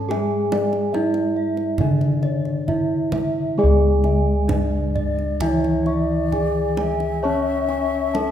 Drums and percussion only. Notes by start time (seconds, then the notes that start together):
0.11 kendang high
0.52 kendang slap, kendang high
0.73 kendang slap
0.94 kendang high
1.14 kendang slap
1.57 kendang slap
1.78 kendang low
2.01 kendang slap
2.23 kendang slap
2.45 kendang slap
2.68 kendang slap, kendang low
3.12 kendang high, kendang low
4.04 kendang slap
4.49 kendang slap, kendang high, kendang low
4.96 kendang low
5.19 kendang slap
5.40 kendang low
5.64 kendang slap
5.86 kendang slap
6.32 kendang low
6.77 kendang high
7.00 kendang slap
7.69 kendang slap
8.15 kendang slap, kendang high